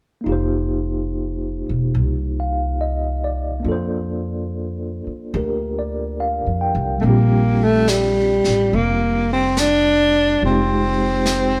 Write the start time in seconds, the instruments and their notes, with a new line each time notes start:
0.21 tine electric piano A#3 D#4
0.26 upright bass F1, tine electric piano F4 G4
0.32 tine electric piano C5
1.69 upright bass E1
1.95 upright bass C2
2.40 tine electric piano F5
2.81 tine electric piano D#5
3.24 tine electric piano D5
3.60 tine electric piano A#3 D4
3.64 upright bass F2, tine electric piano F4
3.68 tine electric piano A4 C5
5.07 muted upright bass stroke
5.34 upright bass D2, tine electric piano D4 G4 A#4
5.79 tine electric piano D5
6.20 tine electric piano F5
6.46 upright bass F2
6.61 tine electric piano G5
6.75 upright bass C2
6.98 tine electric piano G3 C4, tenor saxophone A3
7.03 upright bass A#1, tenor saxophone A#3, tine electric piano D4 F4, brush sweep
7.09 tine electric piano G4
7.63 tenor saxophone A3
7.88 tenor saxophone G3, snare, hi-hat pedal
8.44 upright bass A1, snare
8.73 upright bass F1, tenor saxophone A#3, brush sweep
9.33 tenor saxophone C4
9.57 tenor saxophone D4, snare, hi-hat pedal
10.42 upright bass F1, tine electric piano G#3 C4 D#4 F4 G4, tenor saxophone C4, brush sweep
11.26 snare, hi-hat pedal